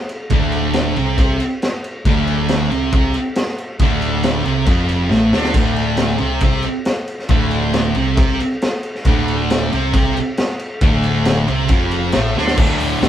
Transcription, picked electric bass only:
0, 0, Header, 1, 2, 480
1, 0, Start_track
1, 0, Tempo, 436047
1, 349, Time_signature, 4, 2, 24, 8
1, 7549, Tempo, 440529
1, 14336, End_track
2, 0, Start_track
2, 0, Title_t, "Picked electric bass"
2, 0, Program_c, 0, 34
2, 340, Note_on_c, 0, 26, 93
2, 1018, Note_off_c, 0, 26, 0
2, 1058, Note_on_c, 0, 36, 93
2, 1284, Note_off_c, 0, 36, 0
2, 1293, Note_on_c, 0, 36, 97
2, 1521, Note_off_c, 0, 36, 0
2, 2254, Note_on_c, 0, 26, 92
2, 2933, Note_off_c, 0, 26, 0
2, 2990, Note_on_c, 0, 36, 102
2, 3209, Note_off_c, 0, 36, 0
2, 3225, Note_on_c, 0, 36, 92
2, 3446, Note_off_c, 0, 36, 0
2, 4174, Note_on_c, 0, 26, 84
2, 4853, Note_off_c, 0, 26, 0
2, 4917, Note_on_c, 0, 36, 97
2, 5132, Note_off_c, 0, 36, 0
2, 5137, Note_on_c, 0, 29, 94
2, 5586, Note_off_c, 0, 29, 0
2, 5624, Note_on_c, 0, 33, 99
2, 5846, Note_off_c, 0, 33, 0
2, 5858, Note_on_c, 0, 38, 93
2, 6084, Note_off_c, 0, 38, 0
2, 6104, Note_on_c, 0, 26, 98
2, 6782, Note_off_c, 0, 26, 0
2, 6828, Note_on_c, 0, 36, 98
2, 7051, Note_off_c, 0, 36, 0
2, 7063, Note_on_c, 0, 36, 87
2, 7289, Note_off_c, 0, 36, 0
2, 8022, Note_on_c, 0, 26, 91
2, 8699, Note_off_c, 0, 26, 0
2, 8746, Note_on_c, 0, 36, 90
2, 8968, Note_off_c, 0, 36, 0
2, 8978, Note_on_c, 0, 36, 92
2, 9204, Note_off_c, 0, 36, 0
2, 9939, Note_on_c, 0, 26, 89
2, 10617, Note_off_c, 0, 26, 0
2, 10673, Note_on_c, 0, 36, 90
2, 10891, Note_off_c, 0, 36, 0
2, 10908, Note_on_c, 0, 36, 104
2, 11129, Note_off_c, 0, 36, 0
2, 11859, Note_on_c, 0, 26, 99
2, 12539, Note_off_c, 0, 26, 0
2, 12574, Note_on_c, 0, 36, 97
2, 12802, Note_off_c, 0, 36, 0
2, 12822, Note_on_c, 0, 29, 104
2, 13271, Note_off_c, 0, 29, 0
2, 13302, Note_on_c, 0, 33, 104
2, 13527, Note_off_c, 0, 33, 0
2, 13536, Note_on_c, 0, 38, 93
2, 13764, Note_off_c, 0, 38, 0
2, 13776, Note_on_c, 0, 26, 91
2, 13927, Note_off_c, 0, 26, 0
2, 14020, Note_on_c, 0, 26, 101
2, 14170, Note_off_c, 0, 26, 0
2, 14262, Note_on_c, 0, 26, 92
2, 14336, Note_off_c, 0, 26, 0
2, 14336, End_track
0, 0, End_of_file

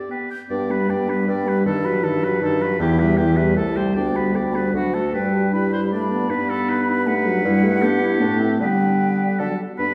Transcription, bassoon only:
0, 0, Header, 1, 2, 480
1, 0, Start_track
1, 0, Key_signature, 1, "major"
1, 0, Tempo, 386349
1, 624, Time_signature, 3, 2, 24, 8
1, 10202, Tempo, 394477
1, 12306, End_track
2, 0, Start_track
2, 0, Title_t, "Bassoon"
2, 0, Program_c, 0, 70
2, 628, Note_on_c, 0, 43, 52
2, 1054, Note_off_c, 0, 43, 0
2, 1109, Note_on_c, 0, 43, 45
2, 1534, Note_off_c, 0, 43, 0
2, 1590, Note_on_c, 0, 43, 54
2, 2007, Note_off_c, 0, 43, 0
2, 2060, Note_on_c, 0, 43, 59
2, 2476, Note_off_c, 0, 43, 0
2, 2530, Note_on_c, 0, 43, 60
2, 2949, Note_off_c, 0, 43, 0
2, 3005, Note_on_c, 0, 43, 68
2, 3423, Note_off_c, 0, 43, 0
2, 3476, Note_on_c, 0, 40, 67
2, 3894, Note_off_c, 0, 40, 0
2, 3942, Note_on_c, 0, 40, 57
2, 4369, Note_off_c, 0, 40, 0
2, 4424, Note_on_c, 0, 36, 58
2, 4856, Note_off_c, 0, 36, 0
2, 4907, Note_on_c, 0, 38, 53
2, 5345, Note_off_c, 0, 38, 0
2, 5395, Note_on_c, 0, 38, 46
2, 5833, Note_off_c, 0, 38, 0
2, 5888, Note_on_c, 0, 38, 51
2, 6326, Note_off_c, 0, 38, 0
2, 6383, Note_on_c, 0, 43, 54
2, 7779, Note_off_c, 0, 43, 0
2, 7833, Note_on_c, 0, 43, 56
2, 9226, Note_off_c, 0, 43, 0
2, 9255, Note_on_c, 0, 43, 76
2, 10184, Note_off_c, 0, 43, 0
2, 10196, Note_on_c, 0, 45, 65
2, 10667, Note_off_c, 0, 45, 0
2, 10682, Note_on_c, 0, 50, 55
2, 11438, Note_off_c, 0, 50, 0
2, 11644, Note_on_c, 0, 50, 48
2, 11753, Note_off_c, 0, 50, 0
2, 12125, Note_on_c, 0, 43, 45
2, 12306, Note_off_c, 0, 43, 0
2, 12306, End_track
0, 0, End_of_file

